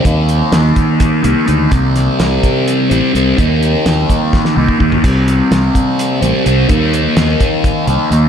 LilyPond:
<<
  \new Staff \with { instrumentName = "Distorted electric guitar" } { \time 7/8 \key ees \major \tempo 4 = 126 <ees bes ees'>2~ <ees bes ees'>8 <ees bes ees'>8 <ees bes ees'>8 | <c g c'>2~ <c g c'>8 <c g c'>8 <c g c'>8 | <ees bes ees'>2~ <ees bes ees'>8 <ees bes ees'>8 <ees bes ees'>8 | <c g c'>2~ <c g c'>8 <c g c'>8 <c g c'>8 |
<ees bes ees'>2~ <ees bes ees'>8 <ees bes ees'>8 <ees bes ees'>8 | }
  \new Staff \with { instrumentName = "Fingered electric bass" } { \clef bass \time 7/8 \key ees \major ees,4 ees,8 r4 c,16 r16 d,8 | c,4 c,8 r4 a,,16 r16 c,8 | ees,4 ees,8 r4 c,16 r16 ees,8 | c,4 c,8 r4 a,,16 r16 c,8 |
ees,4 ees,8 r4 c,16 r16 ees,8 | }
  \new DrumStaff \with { instrumentName = "Drums" } \drummode { \time 7/8 <hh bd>8 hh8 <hh sn>8 <hh bd>8 <hh bd sn>8 hh8 hh8 | <hh bd>8 <hh sn>8 <hh sn>8 <hh bd>8 hh8 hh8 hh8 | <hh bd>8 hh8 <hh sn>8 <hh bd>8 <bd sn>16 sn8 bd16 bd16 tomfh16 | <cymc hh bd>8 hh8 <hh sn>8 <hh bd>8 hh8 hh8 hh8 |
<hh bd>8 hh8 <hh sn>8 <hh bd>8 <hh bd>8 hh8 hh8 | }
>>